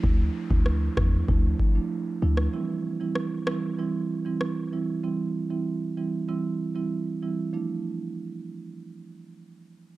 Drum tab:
SD |----r-r--------r|----r-r-----r---|----------------|----------------|
BD |o--o--o-o-o-----|----------------|----------------|----------------|